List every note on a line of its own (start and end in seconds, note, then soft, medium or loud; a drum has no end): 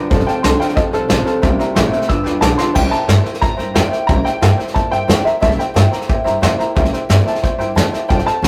0.00 0.10 B3 medium
0.00 0.11 D4 medium
0.00 0.10 G4 medium
0.10 0.22 F1 loud
0.10 0.25 F2 medium
0.10 0.25 C3 loud
0.10 0.27 F3 medium
0.10 0.27 C4 medium
0.10 0.27 D#4 medium
0.10 0.25 A4 loud
0.10 0.20 C5 medium
0.10 0.20 F5 medium
0.10 0.21 A5 medium
0.10 kick loud
0.10 snare soft
0.20 snare soft
0.26 0.42 F2 medium
0.26 0.42 C3 loud
0.26 0.43 C4 soft
0.26 0.43 D#4 medium
0.26 0.43 A4 medium
0.26 0.37 C5 medium
0.26 0.37 F5 medium
0.26 0.43 G5 medium
0.26 0.37 A5 medium
0.26 muted upright bass stroke medium
0.26 snare soft
0.43 0.55 C2 medium
0.43 0.58 F2 medium
0.43 0.58 D3 loud
0.43 0.60 F3 medium
0.43 0.60 C4 medium
0.43 0.60 D#4 medium
0.43 0.59 A4 medium
0.43 0.53 C5 medium
0.43 0.54 F5 medium
0.43 0.54 A5 medium
0.43 0.59 C6 medium
0.43 snare loud
0.43 hi-hat pedal medium
0.59 0.74 F2 medium
0.59 0.75 D3 medium
0.59 0.75 C4 soft
0.59 0.75 D#4 medium
0.59 0.77 A4 medium
0.59 0.70 C5 medium
0.59 0.70 F5 medium
0.59 0.76 G5 medium
0.59 0.71 C6 medium
0.59 muted upright bass stroke medium
0.59 snare soft
0.69 snare soft
0.75 0.88 D2 loud
0.75 0.90 F2 medium
0.75 0.91 C3 medium
0.75 0.92 F3 medium
0.75 0.93 C4 medium
0.75 0.92 D#4 medium
0.75 0.90 A4 medium
0.75 0.86 C5 medium
0.75 0.92 D#5 loud
0.75 0.87 F5 medium
0.75 0.87 A5 medium
0.75 kick loud
0.75 snare soft
0.92 1.04 C2 loud
0.92 1.07 F2 medium
0.92 1.08 C3 loud
0.92 1.08 C4 soft
0.92 1.09 D#4 medium
0.92 1.09 A4 medium
0.92 1.90 A4 medium
0.92 1.03 C5 medium
0.92 1.03 F5 medium
0.92 1.03 A5 loud
0.92 snare soft
1.08 1.21 A1 medium
1.08 1.24 F2 medium
1.08 1.24 C3 loud
1.08 1.26 F3 medium
1.08 1.26 C4 medium
1.08 1.25 D#4 medium
1.08 1.24 A4 medium
1.08 1.19 C5 loud
1.08 1.20 F5 loud
1.08 1.20 A5 loud
1.08 snare loud
1.08 hi-hat pedal loud
1.25 1.41 F2 medium
1.25 1.41 C3 loud
1.25 1.43 C4 medium
1.25 1.43 D#4 medium
1.25 1.42 A4 medium
1.25 1.36 C5 medium
1.25 1.36 F5 medium
1.25 1.36 A5 medium
1.25 muted upright bass stroke medium
1.25 snare soft
1.42 1.54 C2 loud
1.42 1.59 C3 medium
1.42 1.57 C3 loud
1.42 1.59 G3 medium
1.42 1.58 G3 loud
1.42 1.60 A#3 loud
1.42 1.60 E4 medium
1.42 1.58 G4 loud
1.42 1.52 C5 loud
1.42 1.52 E5 medium
1.42 1.53 G5 loud
1.42 kick loud
1.42 snare soft
1.59 1.74 C3 medium
1.59 1.74 G3 medium
1.59 1.75 A#3 medium
1.59 1.76 E4 medium
1.59 1.76 G4 medium
1.59 1.69 C5 medium
1.59 1.69 E5 medium
1.59 1.70 A#5 medium
1.59 muted upright bass stroke medium
1.59 snare soft
1.75 1.87 A1 loud
1.75 1.90 C3 medium
1.75 1.92 C3 loud
1.75 1.93 G3 medium
1.75 1.91 A3 loud
1.75 1.93 A#3 loud
1.75 1.92 E4 loud
1.75 1.91 G4 loud
1.75 1.85 C5 medium
1.75 1.86 E5 medium
1.75 1.86 G5 loud
1.75 snare loud
1.75 hi-hat pedal medium
1.91 2.07 C3 medium
1.91 2.07 A3 medium
1.91 2.09 A#3 soft
1.91 2.10 E4 soft
1.91 2.09 G4 medium
1.91 2.02 C5 medium
1.91 2.02 E5 medium
1.91 2.02 G5 loud
1.91 muted upright bass stroke medium
1.91 snare soft
2.02 snare soft
2.08 2.21 G1 medium
2.08 2.24 G2 medium
2.08 2.24 D3 medium
2.08 2.26 F3 medium
2.08 2.26 B3 medium
2.08 2.25 F4 medium
2.08 2.23 G4 medium
2.08 2.18 B4 medium
2.08 2.19 D5 medium
2.08 2.19 G5 medium
2.08 2.41 E6 loud
2.08 kick loud
2.08 snare soft
2.24 2.37 D2 medium
2.24 2.41 G2 medium
2.24 2.41 D3 loud
2.24 2.41 F3 soft
2.24 2.42 B3 soft
2.24 2.42 F4 medium
2.24 2.42 G4 medium
2.24 2.35 B4 loud
2.24 2.35 D5 medium
2.24 2.35 G5 loud
2.24 snare soft
2.41 2.53 B1 medium
2.41 2.59 G2 medium
2.41 2.57 G2 medium
2.41 2.57 D3 medium
2.41 2.59 D3 medium
2.41 2.59 F3 loud
2.41 2.59 B3 medium
2.41 2.59 F4 medium
2.41 2.57 G4 medium
2.41 2.52 B4 medium
2.41 2.52 D5 medium
2.41 2.52 G5 loud
2.41 2.73 A5 loud
2.41 2.59 D6 medium
2.41 snare loud
2.41 hi-hat pedal medium
2.57 2.74 G2 medium
2.57 2.74 D3 loud
2.57 2.75 B3 soft
2.57 2.76 F4 medium
2.57 2.75 G4 medium
2.57 2.68 B4 medium
2.57 2.69 D5 medium
2.57 2.69 G5 medium
2.57 2.75 C6 loud
2.57 snare medium
2.62 2.75 F3 soft
2.73 2.87 C2 loud
2.73 2.92 C3 medium
2.73 2.92 G3 medium
2.73 2.92 A#3 medium
2.73 2.91 E4 medium
2.73 2.90 G4 medium
2.73 2.84 C5 medium
2.73 2.85 E5 medium
2.73 2.85 G5 medium
2.73 2.93 G5 loud
2.73 kick loud
2.73 snare soft
2.73 crash loud
2.90 3.08 A#3 soft
2.90 3.08 E4 soft
2.90 3.08 G4 medium
2.90 3.01 C5 medium
2.90 3.02 E5 medium
2.90 3.23 A5 loud
2.90 3.02 A#5 medium
2.90 muted upright bass stroke medium
2.90 snare soft
3.07 3.20 G2 medium
3.07 3.25 C3 medium
3.07 3.26 G3 medium
3.07 3.26 A#3 medium
3.07 3.25 E4 medium
3.07 3.23 G4 medium
3.07 3.18 C5 medium
3.07 3.18 E5 medium
3.07 3.18 G5 medium
3.07 snare loud
3.07 hi-hat pedal medium
3.23 3.42 E4 soft
3.23 3.42 G4 soft
3.23 3.34 C5 medium
3.23 3.35 E5 medium
3.23 3.35 G5 medium
3.23 snare soft
3.27 3.41 A#3 soft
3.34 snare soft
3.41 3.53 A2 loud
3.41 3.58 G3 medium
3.41 3.59 A#3 medium
3.41 3.58 E4 medium
3.41 3.56 G4 medium
3.41 3.51 C5 medium
3.41 3.52 E5 medium
3.41 3.52 A5 medium
3.41 3.76 A#5 loud
3.41 kick loud
3.41 snare soft
3.57 3.70 G2 loud
3.57 3.75 A#3 soft
3.57 3.75 E4 soft
3.57 3.75 G4 medium
3.57 3.68 C5 medium
3.57 3.68 E5 medium
3.57 3.68 G5 loud
3.57 snare soft
3.74 3.87 E2 medium
3.74 3.92 C3 medium
3.74 3.92 G3 medium
3.74 3.93 A#3 medium
3.74 3.92 E4 medium
3.74 3.90 G4 medium
3.74 3.85 C5 medium
3.74 3.85 E5 medium
3.74 3.85 G5 medium
3.74 4.10 G5 medium
3.74 snare loud
3.74 hi-hat pedal medium
3.91 4.08 A#3 soft
3.91 4.08 E4 medium
3.91 4.08 G4 medium
3.91 4.01 C5 medium
3.91 4.02 E5 medium
3.91 4.02 G5 medium
3.91 muted upright bass stroke medium
3.91 snare soft
4.07 4.20 C2 loud
4.07 4.25 C3 medium
4.07 4.25 G3 medium
4.07 4.26 A#3 medium
4.07 4.24 E4 medium
4.07 4.22 G4 medium
4.07 4.18 C5 medium
4.07 4.18 E5 medium
4.07 4.19 G5 medium
4.07 4.25 A#5 loud
4.07 kick loud
4.07 snare soft
4.24 4.41 A#3 soft
4.24 4.41 E4 soft
4.24 4.41 G4 medium
4.24 4.35 C5 medium
4.24 4.35 E5 medium
4.24 4.56 G5 loud
4.24 4.35 G5 medium
4.24 muted upright bass stroke medium
4.24 snare soft
4.41 4.53 G2 medium
4.41 4.58 C3 medium
4.41 4.59 G3 medium
4.41 4.59 A#3 medium
4.41 4.58 E4 medium
4.41 4.56 G4 medium
4.41 4.52 C5 medium
4.41 4.52 E5 medium
4.41 4.52 A5 medium
4.41 snare loud
4.41 hi-hat pedal medium
4.57 4.73 A#3 soft
4.57 4.74 E4 medium
4.57 4.75 G4 medium
4.57 4.68 C5 medium
4.57 4.68 E5 medium
4.57 4.69 G5 medium
4.57 muted upright bass stroke medium
4.57 snare soft
4.68 snare soft
4.73 4.87 A2 medium
4.73 4.91 G3 medium
4.73 4.92 A#3 medium
4.73 4.92 E4 medium
4.73 4.90 G4 medium
4.73 4.85 C5 medium
4.73 4.85 E5 medium
4.73 4.85 G5 medium
4.73 4.92 A5 loud
4.73 kick loud
4.73 snare soft
4.91 5.03 G2 medium
4.91 5.07 A#3 soft
4.91 5.08 E4 medium
4.91 5.08 G4 medium
4.91 5.01 C5 loud
4.91 5.02 E5 medium
4.91 5.23 G5 loud
4.91 5.02 G5 loud
4.91 snare soft
5.07 5.20 E2 medium
5.07 5.25 C3 medium
5.07 5.25 G3 medium
5.07 5.25 A#3 medium
5.07 5.24 E4 loud
5.07 5.22 G4 medium
5.07 5.18 C5 medium
5.07 5.19 E5 medium
5.07 5.19 G5 medium
5.07 snare loud
5.07 hi-hat pedal loud
5.23 5.41 A#3 medium
5.23 5.41 E4 medium
5.23 5.41 G4 medium
5.23 5.35 C5 medium
5.23 5.40 E5 medium
5.23 5.35 E5 medium
5.23 5.35 A#5 medium
5.23 muted upright bass stroke medium
5.23 snare soft
5.40 5.53 C2 medium
5.40 5.58 C3 medium
5.40 5.58 G3 medium
5.40 5.59 A#3 medium
5.40 5.58 E4 medium
5.40 5.56 G4 medium
5.40 5.51 C5 medium
5.40 5.52 E5 medium
5.40 5.59 E5 loud
5.40 5.52 A5 medium
5.40 kick loud
5.40 snare soft
5.51 snare soft
5.57 5.73 A#3 soft
5.57 5.74 E4 medium
5.57 5.74 G4 medium
5.57 5.68 C5 medium
5.57 5.69 E5 medium
5.57 5.69 G5 medium
5.57 6.88 G5 medium
5.57 muted upright bass stroke medium
5.57 snare soft
5.74 5.87 G2 medium
5.74 5.91 C3 medium
5.74 5.92 G3 medium
5.74 5.92 A#3 medium
5.74 5.91 E4 medium
5.74 5.89 G4 medium
5.74 5.85 C5 medium
5.74 5.85 E5 medium
5.74 5.85 A5 medium
5.74 snare loud
5.74 hi-hat pedal medium
5.90 6.07 A#3 soft
5.90 6.08 E4 soft
5.90 6.08 G4 medium
5.90 6.02 C5 medium
5.90 6.02 E5 medium
5.90 6.02 A#5 medium
5.90 muted upright bass stroke medium
5.90 snare soft
6.01 snare soft
6.07 6.20 A2 medium
6.07 6.24 G3 medium
6.07 6.25 A#3 medium
6.07 6.25 E4 medium
6.07 6.23 G4 medium
6.07 6.18 C5 medium
6.07 6.19 E5 medium
6.07 6.19 G5 medium
6.07 kick loud
6.07 snare soft
6.24 6.37 G2 loud
6.24 6.41 A#3 medium
6.24 6.42 E4 medium
6.24 6.41 G4 medium
6.24 6.35 C5 loud
6.24 6.35 E5 loud
6.24 6.35 A#5 loud
6.24 snare soft
6.41 6.53 E2 medium
6.41 6.58 C3 medium
6.41 6.59 G3 medium
6.41 6.59 A#3 medium
6.41 6.59 E4 loud
6.41 6.58 G4 loud
6.41 6.52 C5 loud
6.41 6.52 E5 loud
6.41 6.52 G5 loud
6.41 snare loud
6.41 hi-hat pedal medium
6.58 6.76 E4 medium
6.58 6.76 G4 medium
6.58 6.69 C5 loud
6.58 6.69 E5 medium
6.58 6.69 A#5 loud
6.58 muted upright bass stroke medium
6.58 snare soft
6.62 6.75 A#3 medium
6.75 6.87 C2 medium
6.75 6.92 C3 medium
6.75 6.92 G3 medium
6.75 6.93 A#3 loud
6.75 6.93 E4 loud
6.75 6.92 G4 loud
6.75 6.85 C5 loud
6.75 6.86 E5 medium
6.75 6.86 G5 loud
6.75 kick loud
6.75 snare soft
6.85 snare soft
6.92 7.09 A#3 medium
6.92 7.09 E4 medium
6.92 7.09 G4 medium
6.92 7.03 C5 medium
6.92 7.03 E5 medium
6.92 7.03 G5 medium
6.92 muted upright bass stroke medium
6.92 snare soft
7.09 7.20 G2 medium
7.09 7.26 C3 medium
7.09 7.26 G3 medium
7.09 7.26 A#3 medium
7.09 7.25 E4 medium
7.09 7.24 G4 loud
7.09 7.19 C5 medium
7.09 7.19 E5 medium
7.09 7.20 G5 medium
7.09 snare loud
7.09 hi-hat pedal medium
7.25 7.42 A#3 soft
7.25 7.42 E4 medium
7.25 7.42 G4 medium
7.25 7.36 C5 medium
7.25 7.36 E5 medium
7.25 7.36 A5 medium
7.25 snare soft
7.35 snare soft
7.41 7.54 A2 medium
7.41 7.59 G3 medium
7.41 7.59 A#3 medium
7.41 7.59 E4 medium
7.41 7.58 G4 medium
7.41 7.52 C5 medium
7.41 7.53 E5 medium
7.41 7.53 G5 loud
7.41 kick loud
7.41 snare soft
7.58 7.70 G2 medium
7.58 7.75 A#3 medium
7.58 7.75 E4 medium
7.58 7.76 G4 medium
7.58 7.69 C5 loud
7.58 7.69 E5 medium
7.58 7.69 G5 loud
7.58 snare soft
7.75 7.87 E2 medium
7.75 7.92 C3 medium
7.75 7.92 G3 medium
7.75 7.93 A#3 medium
7.75 7.92 E4 medium
7.75 7.90 G4 medium
7.75 7.86 C5 medium
7.75 7.86 E5 medium
7.75 7.86 G5 loud
7.75 8.10 A5 medium
7.75 snare loud
7.75 hi-hat pedal medium
7.91 8.08 A#3 soft
7.91 8.09 E4 soft
7.91 8.08 G4 medium
7.91 8.02 C5 medium
7.91 8.02 E5 medium
7.91 8.02 G5 medium
7.91 muted upright bass stroke medium
7.91 snare soft
8.08 8.21 F1 loud
8.08 8.25 F3 medium
8.08 8.25 C4 medium
8.08 8.25 D#4 medium
8.08 8.23 A4 loud
8.08 8.19 C5 medium
8.08 8.19 F5 medium
8.08 8.24 G5 medium
8.08 8.19 A5 medium
8.08 kick loud
8.08 snare soft
8.19 snare soft
8.25 8.41 C4 soft
8.25 8.42 D#4 soft
8.25 8.42 A4 medium
8.25 8.36 C5 medium
8.25 8.36 F5 medium
8.25 8.36 G5 medium
8.25 8.48 A5 loud
8.25 muted upright bass stroke medium
8.25 snare soft
8.42 8.48 C2 loud
8.42 8.48 F3 medium
8.42 8.48 C4 medium
8.42 8.48 D#4 medium
8.42 8.48 A4 medium
8.42 8.48 C5 medium
8.42 8.48 F5 medium
8.42 8.48 G5 medium
8.42 snare loud
8.42 hi-hat pedal medium